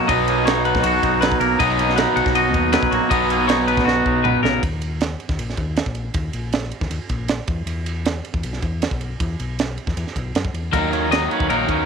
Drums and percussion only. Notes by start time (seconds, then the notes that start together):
0.09 kick, ride
0.28 ride
0.47 snare, ride
0.65 ride
0.75 kick, snare
0.84 ride
1.03 kick, ride
1.22 snare, ride
1.32 kick
1.41 ride
1.60 kick, ride
1.79 ride
1.90 snare
1.98 snare, ride
2.17 ride
2.26 kick, snare
2.35 ride
2.54 kick, ride
2.73 snare, ride
2.83 kick
2.92 ride
3.11 kick, ride
3.30 ride
3.49 snare, ride
3.68 ride
3.77 kick, snare
3.88 snare
4.06 kick
4.25 mid tom
4.45 snare
4.63 kick, ride
4.82 ride
5.01 snare, ride
5.20 ride
5.29 kick, snare
5.39 ride
5.50 snare
5.57 kick, ride
5.76 snare, ride
5.86 kick
5.95 ride
6.14 kick, ride
6.33 ride
6.53 snare, ride
6.64 snare
6.72 ride
6.81 kick, snare
6.91 ride
7.09 kick, ride
7.28 snare, ride
7.47 kick, ride
7.67 ride
7.86 ride
8.05 snare, ride
8.25 ride
8.34 kick
8.43 ride
8.53 snare
8.62 kick, ride
8.82 snare, ride
8.91 kick
9.01 ride
9.20 kick, ride
9.40 ride
9.59 snare, ride
9.78 ride
9.87 kick, snare
9.97 ride
10.07 snare
10.16 kick, ride
10.35 snare, ride
10.45 kick
10.54 ride
10.73 kick, ride
10.93 ride
11.12 snare, ride
11.31 ride
11.40 kick
11.50 ride
11.68 kick, ride